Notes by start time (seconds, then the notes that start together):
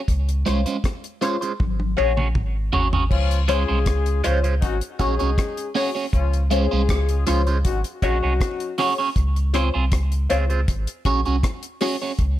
0.08 C#2, kick, closed hi-hat
0.29 closed hi-hat
0.46 C2 G#3 C#4 F4 C5 C#5, cross-stick, closed hi-hat
0.66 G#3 C#4 F4 C5, closed hi-hat
0.84 kick, cross-stick, closed hi-hat
1.04 closed hi-hat
1.21 G#3 C#4 F4 C5 C#5, closed hi-hat
1.41 G#3 C#4 F4 C5, closed hi-hat
1.60 G#1, kick, high tom
1.80 high tom
1.97 A#1 C#4 F#4 G#4 C#5
2.17 C#4 F#4 G#4 C#5, mid tom
2.35 G#1, kick, mid tom
2.73 G#1 C#4 F#4 G#4 C#5, floor tom
2.93 C#4 F#4 G#4 C#5, floor tom
3.10 C#2 F3 C#4 F4, kick, crash
3.31 closed hi-hat
3.48 G#3 C#4 F4 G#4 C5 C#5, closed hi-hat
3.68 C2 G#3 C#4 F4 C5
3.86 C#2, kick, cross-stick, closed hi-hat
4.06 closed hi-hat
4.24 C#2 F3 G#3 C#4 F4 C5 C#5, closed hi-hat
4.44 G#3 C#4 F4 C5, closed hi-hat
4.61 G#1 F#3 C#4 D#4 F#4, kick, closed hi-hat
4.81 closed hi-hat
4.99 A#1 G#3 C#4 D#4 F#4 G#4 C#5, kick, closed hi-hat
5.19 C2 C#4 F#4 G#4 C#5, closed hi-hat
5.38 kick, cross-stick, closed hi-hat
5.57 closed hi-hat
5.75 C#4 F#4 G#4 C#5, open hi-hat
5.95 C#4 F#4 G#4 C#5
6.13 C#2 F3 C#4 F4, kick, closed hi-hat
6.33 closed hi-hat
6.51 G#3 C#4 F4 G#4 C5 C#5, closed hi-hat
6.71 C2 G#3 C#4 F4 C5
6.89 C#2, kick, cross-stick, closed hi-hat
7.09 closed hi-hat
7.26 C#2 F3 G#3 C#4 F4 C5 C#5, closed hi-hat
7.47 G#3 C#4 F4 C5, closed hi-hat
7.64 G#1 F#3 C#4 D#4 F#4, kick, closed hi-hat
7.84 closed hi-hat
8.02 A#1 F#3 C#4 D#4 F#4 G#4 C#5, kick, closed hi-hat
8.23 C2 C#4 F#4 G#4 C#5
8.41 kick, cross-stick, closed hi-hat
8.60 closed hi-hat
8.78 C#4 F#4 G#4 C#5, cross-stick, open hi-hat
8.98 C#4 F#4 G#4 C#5
9.16 C#2, kick, closed hi-hat
9.36 closed hi-hat
9.53 C4 F4 G#4 C5 C#5, cross-stick, closed hi-hat
9.74 C2 C4 F4 G#4 C5
9.92 C#2, kick, cross-stick, closed hi-hat
10.12 closed hi-hat
10.29 C#2 C4 F4 G#4 C5 C#5, closed hi-hat
10.50 C4 F4 G#4 C5, closed hi-hat
10.68 G#1, kick, closed hi-hat
10.87 closed hi-hat
11.05 A#1 C#4 F#4 G#4 C#5, kick, closed hi-hat
11.25 C2 C#4 F#4 G#4 C#5, closed hi-hat
11.43 kick, cross-stick, closed hi-hat
11.63 closed hi-hat
11.81 C#4 F#4 G#4 C#5, cross-stick, open hi-hat
12.02 C#4 F#4 G#4 C#5
12.19 C#2, kick, closed hi-hat